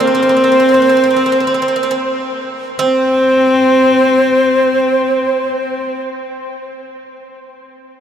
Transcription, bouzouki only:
0, 0, Header, 1, 2, 480
1, 0, Start_track
1, 0, Tempo, 625000
1, 2152, Time_signature, 9, 3, 24, 8
1, 6145, End_track
2, 0, Start_track
2, 0, Title_t, "Bouzouki"
2, 0, Program_c, 0, 25
2, 2, Note_on_c, 0, 60, 61
2, 47, Note_off_c, 0, 60, 0
2, 56, Note_on_c, 0, 60, 47
2, 103, Note_off_c, 0, 60, 0
2, 113, Note_on_c, 0, 60, 53
2, 164, Note_off_c, 0, 60, 0
2, 173, Note_on_c, 0, 60, 45
2, 215, Note_off_c, 0, 60, 0
2, 224, Note_on_c, 0, 60, 50
2, 271, Note_off_c, 0, 60, 0
2, 281, Note_on_c, 0, 60, 45
2, 327, Note_off_c, 0, 60, 0
2, 336, Note_on_c, 0, 60, 49
2, 389, Note_off_c, 0, 60, 0
2, 398, Note_on_c, 0, 60, 41
2, 450, Note_off_c, 0, 60, 0
2, 459, Note_on_c, 0, 60, 46
2, 510, Note_off_c, 0, 60, 0
2, 529, Note_on_c, 0, 60, 36
2, 560, Note_off_c, 0, 60, 0
2, 569, Note_on_c, 0, 60, 41
2, 620, Note_off_c, 0, 60, 0
2, 629, Note_on_c, 0, 60, 39
2, 678, Note_off_c, 0, 60, 0
2, 687, Note_on_c, 0, 60, 43
2, 734, Note_off_c, 0, 60, 0
2, 743, Note_on_c, 0, 60, 40
2, 787, Note_off_c, 0, 60, 0
2, 796, Note_on_c, 0, 60, 45
2, 840, Note_off_c, 0, 60, 0
2, 849, Note_on_c, 0, 60, 37
2, 885, Note_off_c, 0, 60, 0
2, 894, Note_on_c, 0, 60, 45
2, 957, Note_off_c, 0, 60, 0
2, 967, Note_on_c, 0, 60, 43
2, 1006, Note_off_c, 0, 60, 0
2, 1015, Note_on_c, 0, 60, 46
2, 1069, Note_off_c, 0, 60, 0
2, 1078, Note_on_c, 0, 60, 40
2, 1122, Note_off_c, 0, 60, 0
2, 1131, Note_on_c, 0, 60, 47
2, 1176, Note_off_c, 0, 60, 0
2, 1185, Note_on_c, 0, 60, 44
2, 1235, Note_off_c, 0, 60, 0
2, 1244, Note_on_c, 0, 60, 52
2, 1282, Note_off_c, 0, 60, 0
2, 1291, Note_on_c, 0, 60, 43
2, 1342, Note_off_c, 0, 60, 0
2, 1351, Note_on_c, 0, 60, 47
2, 1396, Note_off_c, 0, 60, 0
2, 1405, Note_on_c, 0, 60, 46
2, 1456, Note_off_c, 0, 60, 0
2, 1465, Note_on_c, 0, 60, 54
2, 1530, Note_off_c, 0, 60, 0
2, 2142, Note_on_c, 0, 60, 81
2, 4590, Note_off_c, 0, 60, 0
2, 6145, End_track
0, 0, End_of_file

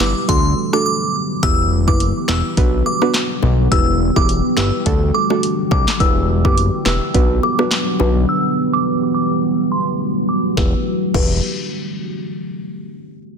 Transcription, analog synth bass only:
0, 0, Header, 1, 2, 480
1, 0, Start_track
1, 0, Key_signature, 1, "minor"
1, 0, Tempo, 571429
1, 1201, Time_signature, 4, 2, 24, 8
1, 11238, End_track
2, 0, Start_track
2, 0, Title_t, "Analog synth bass"
2, 0, Program_c, 0, 38
2, 1, Note_on_c, 0, 31, 100
2, 121, Note_off_c, 0, 31, 0
2, 243, Note_on_c, 0, 38, 102
2, 455, Note_off_c, 0, 38, 0
2, 1201, Note_on_c, 0, 28, 106
2, 1576, Note_on_c, 0, 30, 78
2, 1589, Note_off_c, 0, 28, 0
2, 1789, Note_off_c, 0, 30, 0
2, 1922, Note_on_c, 0, 28, 100
2, 2041, Note_off_c, 0, 28, 0
2, 2163, Note_on_c, 0, 35, 109
2, 2375, Note_off_c, 0, 35, 0
2, 2881, Note_on_c, 0, 35, 97
2, 3095, Note_off_c, 0, 35, 0
2, 3122, Note_on_c, 0, 28, 115
2, 3454, Note_off_c, 0, 28, 0
2, 3497, Note_on_c, 0, 28, 85
2, 3710, Note_off_c, 0, 28, 0
2, 3841, Note_on_c, 0, 31, 97
2, 3961, Note_off_c, 0, 31, 0
2, 4083, Note_on_c, 0, 38, 98
2, 4296, Note_off_c, 0, 38, 0
2, 4801, Note_on_c, 0, 36, 98
2, 4921, Note_off_c, 0, 36, 0
2, 5041, Note_on_c, 0, 28, 107
2, 5417, Note_on_c, 0, 30, 84
2, 5430, Note_off_c, 0, 28, 0
2, 5630, Note_off_c, 0, 30, 0
2, 5761, Note_on_c, 0, 28, 98
2, 5881, Note_off_c, 0, 28, 0
2, 6003, Note_on_c, 0, 35, 110
2, 6216, Note_off_c, 0, 35, 0
2, 6722, Note_on_c, 0, 35, 97
2, 6935, Note_off_c, 0, 35, 0
2, 8881, Note_on_c, 0, 28, 102
2, 9026, Note_off_c, 0, 28, 0
2, 9361, Note_on_c, 0, 28, 108
2, 9584, Note_off_c, 0, 28, 0
2, 11238, End_track
0, 0, End_of_file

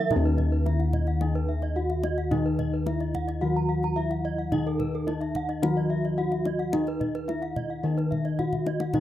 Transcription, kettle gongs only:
0, 0, Header, 1, 2, 480
1, 0, Start_track
1, 0, Tempo, 552486
1, 89, Time_signature, 4, 2, 24, 8
1, 7820, End_track
2, 0, Start_track
2, 0, Title_t, "Kettle gongs"
2, 0, Program_c, 0, 14
2, 0, Note_on_c, 0, 51, 50
2, 96, Note_on_c, 0, 63, 59
2, 140, Note_on_c, 0, 39, 88
2, 539, Note_off_c, 0, 51, 0
2, 573, Note_on_c, 0, 64, 37
2, 642, Note_off_c, 0, 64, 0
2, 1498, Note_off_c, 0, 63, 0
2, 1529, Note_on_c, 0, 64, 32
2, 1599, Note_off_c, 0, 64, 0
2, 2008, Note_on_c, 0, 63, 62
2, 2489, Note_on_c, 0, 64, 38
2, 2559, Note_off_c, 0, 64, 0
2, 2959, Note_off_c, 0, 39, 0
2, 2974, Note_on_c, 0, 51, 55
2, 3413, Note_off_c, 0, 63, 0
2, 3450, Note_on_c, 0, 64, 36
2, 3519, Note_off_c, 0, 64, 0
2, 3930, Note_on_c, 0, 63, 57
2, 4376, Note_off_c, 0, 51, 0
2, 4406, Note_on_c, 0, 64, 46
2, 4475, Note_off_c, 0, 64, 0
2, 4887, Note_on_c, 0, 51, 54
2, 5333, Note_off_c, 0, 63, 0
2, 5370, Note_on_c, 0, 64, 37
2, 5440, Note_off_c, 0, 64, 0
2, 5849, Note_on_c, 0, 63, 61
2, 6292, Note_off_c, 0, 51, 0
2, 6334, Note_on_c, 0, 64, 33
2, 6403, Note_off_c, 0, 64, 0
2, 6808, Note_on_c, 0, 51, 62
2, 7253, Note_off_c, 0, 63, 0
2, 7287, Note_on_c, 0, 64, 38
2, 7357, Note_off_c, 0, 64, 0
2, 7765, Note_on_c, 0, 63, 60
2, 7820, Note_off_c, 0, 51, 0
2, 7820, Note_off_c, 0, 63, 0
2, 7820, End_track
0, 0, End_of_file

